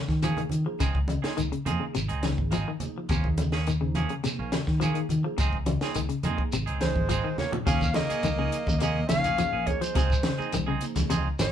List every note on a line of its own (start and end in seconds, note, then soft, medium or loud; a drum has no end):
0.00 0.12 C#3 medium
0.09 0.32 D#3 medium
0.09 kick medium
0.09 snare soft
0.22 0.46 F3 medium
0.22 0.40 F3 medium
0.22 0.33 F3 medium
0.22 0.46 A#3 medium
0.22 0.41 A#3 medium
0.22 0.40 C#4 medium
0.22 0.46 D#4 medium
0.22 0.46 G#4 medium
0.22 0.41 G#4 medium
0.22 closed hi-hat medium
0.22 high conga medium
0.22 shekere medium
0.37 0.55 D#3 medium
0.37 closed hi-hat soft
0.37 low conga medium
0.49 0.63 D#3 medium
0.49 closed hi-hat soft
0.49 low conga medium
0.49 shekere soft
0.66 0.80 F3 medium
0.66 0.75 F3 medium
0.66 0.80 A#3 medium
0.66 0.80 D#4 medium
0.66 0.80 G#4 medium
0.78 0.93 C#2 loud
0.78 0.98 C#3 medium
0.78 0.97 F3 medium
0.78 0.98 C4 medium
0.78 0.98 D#4 medium
0.78 0.98 G#4 medium
0.78 kick medium
0.78 closed hi-hat medium
0.78 high conga soft
0.78 shekere medium
0.95 1.19 C#2 medium
0.95 kick medium
1.08 1.27 C#3 medium
1.08 closed hi-hat medium
1.08 high conga medium
1.08 shekere soft
1.22 1.47 F3 medium
1.22 1.47 A#3 medium
1.22 1.41 C4 soft
1.22 1.40 D#4 soft
1.22 1.47 D#4 medium
1.22 1.40 G#4 soft
1.22 1.47 G#4 loud
1.22 snare medium
1.22 closed hi-hat soft
1.37 1.50 C#2 medium
1.37 1.46 D#3 medium
1.37 closed hi-hat medium
1.37 high conga soft
1.37 shekere medium
1.52 1.70 C#3 medium
1.52 closed hi-hat soft
1.65 1.79 F2 medium
1.65 1.83 F3 medium
1.65 1.98 F3 medium
1.65 1.98 A#3 medium
1.65 1.84 C4 medium
1.65 1.84 D#4 medium
1.65 1.98 D#4 medium
1.65 1.84 G#4 medium
1.65 1.98 G#4 medium
1.65 closed hi-hat soft
1.65 high conga medium
1.65 low conga medium
1.65 shekere soft
1.80 1.89 C#3 medium
1.95 2.08 G#1 loud
1.95 2.13 C3 medium
1.95 closed hi-hat medium
1.95 high conga soft
1.95 shekere medium
2.09 2.34 C#2 medium
2.09 2.27 C4 soft
2.09 2.26 D#4 medium
2.09 2.26 G#4 medium
2.09 closed hi-hat soft
2.23 2.42 C#3 medium
2.23 2.56 F3 medium
2.23 2.55 A#3 medium
2.23 2.55 D#4 medium
2.23 2.56 G#4 medium
2.23 snare medium
2.23 closed hi-hat soft
2.23 high conga medium
2.23 shekere soft
2.38 2.62 G#1 medium
2.38 kick medium
2.51 2.69 F3 medium
2.51 2.62 F3 medium
2.51 2.70 C4 medium
2.51 2.70 D#4 medium
2.51 2.70 G#4 medium
2.51 closed hi-hat medium
2.51 high conga medium
2.51 shekere medium
2.68 2.85 D#3 medium
2.80 3.05 F3 medium
2.80 3.05 A#3 medium
2.80 3.05 D#4 medium
2.80 3.05 G#4 medium
2.80 closed hi-hat soft
2.80 low conga medium
2.80 shekere soft
2.98 3.06 F3 medium
3.09 4.04 D#2 loud
3.09 3.28 C3 medium
3.09 3.27 F3 medium
3.09 3.27 A#3 medium
3.09 3.27 C#4 medium
3.09 muted clean electric guitar stroke medium
3.09 kick medium
3.09 closed hi-hat medium
3.09 high conga soft
3.09 shekere medium
3.24 3.55 F3 medium
3.24 3.55 A#3 medium
3.24 3.56 D#4 medium
3.24 3.55 G#4 medium
3.24 kick medium
3.38 3.57 C#3 medium
3.38 closed hi-hat soft
3.38 high conga medium
3.38 shekere soft
3.52 3.71 A#3 soft
3.52 3.71 C#4 medium
3.52 3.70 G#4 medium
3.52 snare medium
3.52 closed hi-hat soft
3.66 3.76 D#3 medium
3.66 closed hi-hat medium
3.66 high conga soft
3.66 shekere medium
3.81 3.99 C#3 medium
3.81 4.05 F3 medium
3.81 4.05 A#3 medium
3.81 4.05 D#4 medium
3.81 4.05 G#4 medium
3.95 4.13 F3 medium
3.95 4.13 A#3 medium
3.95 4.13 C#4 medium
3.95 4.13 G#4 medium
3.95 closed hi-hat medium
3.95 high conga medium
3.95 low conga medium
3.95 shekere soft
4.09 4.19 C#3 medium
4.09 closed hi-hat soft
4.24 4.42 C3 medium
4.24 4.56 F3 medium
4.24 4.55 A#3 medium
4.24 4.55 D#4 medium
4.24 4.56 G#4 medium
4.24 snare soft
4.24 closed hi-hat medium
4.24 high conga soft
4.24 shekere medium
4.39 4.51 A#1 medium
4.39 4.56 A#3 soft
4.39 4.56 C#4 soft
4.52 4.70 C#3 medium
4.52 snare medium
4.52 closed hi-hat soft
4.52 high conga medium
4.52 shekere soft
4.67 4.91 D#3 medium
4.67 kick medium
4.67 snare soft
4.80 4.89 F3 medium
4.80 4.99 F3 medium
4.80 5.05 F3 medium
4.80 4.99 A#3 medium
4.80 5.05 A#3 medium
4.80 4.99 C#4 medium
4.80 5.05 D#4 medium
4.80 5.05 G#4 medium
4.80 5.00 G#4 medium
4.80 closed hi-hat medium
4.80 high conga medium
4.80 shekere medium
4.94 5.13 D#3 medium
4.94 closed hi-hat soft
5.09 5.22 D#3 medium
5.09 closed hi-hat soft
5.09 low conga medium
5.09 shekere soft
5.24 5.33 F3 medium
5.24 5.40 F3 medium
5.24 5.40 A#3 medium
5.24 5.39 D#4 medium
5.24 5.40 G#4 medium
5.38 5.51 C#2 loud
5.38 5.56 F3 medium
5.38 5.57 C4 medium
5.38 5.57 D#4 medium
5.38 5.57 G#4 medium
5.38 muted clean electric guitar stroke medium
5.38 kick medium
5.38 closed hi-hat medium
5.38 high conga soft
5.38 shekere medium
5.52 5.76 C#2 medium
5.52 kick medium
5.66 5.84 C#3 medium
5.66 closed hi-hat medium
5.66 high conga loud
5.66 shekere soft
5.81 6.05 F3 medium
5.81 6.05 A#3 medium
5.81 6.00 C4 medium
5.81 6.05 D#4 medium
5.81 6.00 D#4 soft
5.81 6.05 G#4 loud
5.81 5.99 G#4 soft
5.81 snare medium
5.81 closed hi-hat soft
5.94 6.08 C#2 medium
5.94 6.05 D#3 medium
5.94 closed hi-hat medium
5.94 high conga soft
5.94 shekere medium
6.09 6.27 C#3 medium
6.09 closed hi-hat soft
6.23 6.37 F2 medium
6.23 6.41 F3 medium
6.23 6.55 F3 medium
6.23 6.55 A#3 medium
6.23 6.42 C4 medium
6.23 6.42 D#4 medium
6.23 6.55 D#4 medium
6.23 6.56 G#4 medium
6.23 6.42 G#4 medium
6.23 closed hi-hat medium
6.23 high conga medium
6.23 low conga medium
6.23 shekere soft
6.38 muted clean electric guitar stroke medium
6.38 kick medium
6.52 6.65 G#1 loud
6.52 6.71 C3 medium
6.52 closed hi-hat medium
6.52 high conga soft
6.52 shekere medium
6.66 6.91 C#2 medium
6.66 6.85 C4 medium
6.66 6.84 D#4 medium
6.66 6.84 G#4 medium
6.66 closed hi-hat soft
6.80 6.99 C#3 medium
6.80 7.12 F3 medium
6.80 7.36 G#3 medium
6.80 7.12 A#3 medium
6.80 7.12 D#4 medium
6.80 7.12 G#4 loud
6.80 7.35 C5 medium
6.80 snare medium
6.80 closed hi-hat soft
6.80 high conga medium
6.80 shekere soft
6.96 7.20 G#1 medium
6.96 kick medium
6.96 high conga medium
7.09 7.18 F3 medium
7.09 7.27 F3 medium
7.09 7.28 C4 medium
7.09 7.28 D#4 medium
7.09 7.28 G#4 medium
7.09 kick medium
7.09 closed hi-hat medium
7.09 shekere medium
7.24 7.42 D#3 medium
7.37 7.61 F3 medium
7.37 7.61 A#3 medium
7.37 7.52 A#3 medium
7.37 7.61 D#4 medium
7.37 7.61 G#4 medium
7.37 7.52 C#5 medium
7.37 snare soft
7.37 low conga loud
7.37 shekere soft
7.52 7.61 F3 medium
7.52 floor tom medium
7.52 low conga medium
7.65 7.91 D#2 medium
7.65 7.85 C3 medium
7.65 7.84 F3 medium
7.65 7.84 A#3 medium
7.65 7.93 C#4 loud
7.65 7.85 C#4 medium
7.65 7.85 G#4 medium
7.65 7.93 F5 medium
7.65 kick loud
7.65 closed hi-hat medium
7.65 low conga medium
7.65 shekere medium
7.81 kick medium
7.81 high conga medium
7.81 shekere medium
7.93 8.14 C#3 medium
7.93 8.19 F3 medium
7.93 8.76 A#3 medium
7.93 8.19 A#3 medium
7.93 8.19 D#4 medium
7.93 8.19 G#4 medium
7.93 8.77 D#5 loud
7.93 snare medium
7.93 closed hi-hat medium
7.93 high conga medium
8.10 8.28 C#4 soft
8.10 8.27 G#4 medium
8.10 muted fingered electric bass stroke soft
8.10 closed hi-hat soft
8.10 shekere soft
8.23 8.48 C#2 loud
8.23 8.34 D#3 medium
8.23 closed hi-hat medium
8.23 high conga medium
8.23 shekere medium
8.37 8.57 C#3 medium
8.37 8.61 F3 medium
8.37 8.61 A#3 medium
8.37 8.56 A#3 soft
8.37 8.56 C#4 soft
8.37 8.61 D#4 medium
8.37 8.61 G#4 medium
8.37 8.56 G#4 soft
8.52 closed hi-hat medium
8.52 shekere soft
8.67 9.03 D#2 medium
8.67 8.77 C#3 medium
8.67 kick medium
8.67 high conga medium
8.67 shekere medium
8.78 8.99 C3 medium
8.78 9.06 A#3 loud
8.78 8.97 G#4 medium
8.78 9.08 D#5 loud
8.78 closed hi-hat medium
8.82 8.97 F3 medium
8.82 8.99 F3 medium
8.82 8.98 A#3 medium
8.82 8.99 A#3 medium
8.82 9.00 C#4 medium
8.82 8.97 D#4 medium
8.82 9.00 G#4 medium
8.82 shekere medium
9.06 9.45 A#1 medium
9.06 9.69 C#4 medium
9.06 9.68 F5 loud
9.06 snare medium
9.06 closed hi-hat soft
9.06 high conga medium
9.06 shekere medium
9.11 9.28 C#3 medium
9.11 9.26 F3 medium
9.11 9.26 A#3 medium
9.11 9.26 D#4 medium
9.11 9.26 G#4 medium
9.24 9.42 A#3 soft
9.24 9.42 C#4 soft
9.24 9.42 G#4 medium
9.24 closed hi-hat medium
9.24 low conga medium
9.24 shekere soft
9.38 9.47 F3 medium
9.38 9.54 F3 medium
9.38 9.54 A#3 medium
9.38 9.54 D#4 medium
9.38 9.54 G#4 medium
9.38 closed hi-hat medium
9.38 high conga medium
9.38 shekere medium
9.53 9.77 A#1 medium
9.53 9.71 A#3 soft
9.53 9.70 C#4 soft
9.53 9.70 G#4 soft
9.67 9.95 F3 medium
9.67 9.96 A#3 medium
9.67 9.83 A#3 medium
9.67 9.96 D#4 medium
9.67 9.96 G#4 medium
9.67 9.82 C#5 medium
9.67 kick medium
9.67 closed hi-hat soft
9.67 high conga medium
9.67 shekere soft
9.81 9.90 F3 medium
9.81 10.67 G#3 medium
9.81 10.67 C5 medium
9.81 closed hi-hat soft
9.81 shekere medium
9.94 10.19 C#2 medium
9.94 10.14 C3 medium
9.94 10.12 F3 medium
9.94 10.13 C4 medium
9.94 10.13 D#4 medium
9.94 10.13 G#4 medium
9.94 kick loud
9.94 closed hi-hat medium
9.94 low conga medium
9.94 shekere medium
10.10 kick medium
10.10 shekere medium
10.23 10.42 C#3 medium
10.23 snare medium
10.23 closed hi-hat medium
10.23 high conga medium
10.38 10.62 F3 medium
10.38 10.62 A#3 medium
10.38 10.56 C4 soft
10.38 10.56 D#4 medium
10.38 10.62 D#4 medium
10.38 10.55 G#4 medium
10.38 10.62 G#4 medium
10.38 muted fingered electric bass stroke soft
10.38 shekere soft
10.52 10.77 C2 medium
10.52 10.63 D#3 medium
10.52 closed hi-hat medium
10.52 high conga medium
10.52 shekere medium
10.67 10.85 C#3 medium
10.67 10.85 C4 medium
10.67 10.84 D#4 medium
10.67 10.84 G#4 medium
10.81 11.28 F3 medium
10.81 11.28 A#3 medium
10.81 11.28 D#4 medium
10.81 11.28 G#4 medium
10.81 closed hi-hat medium
10.81 shekere soft
10.96 11.31 C#2 medium
10.96 11.05 C#3 medium
10.96 kick medium
10.96 snare soft
10.96 closed hi-hat medium
10.96 high conga medium
10.96 low conga medium
10.96 shekere medium
11.10 11.27 C3 medium
11.10 11.27 F3 medium
11.10 11.27 C4 medium
11.10 11.28 D#4 medium
11.10 11.27 G#4 medium
11.10 closed hi-hat medium
11.10 high conga medium
11.10 shekere medium
11.39 11.52 G#1 medium
11.39 11.52 G#3 medium
11.39 11.52 C#5 loud
11.39 snare medium
11.39 closed hi-hat medium
11.39 high conga medium
11.39 shekere medium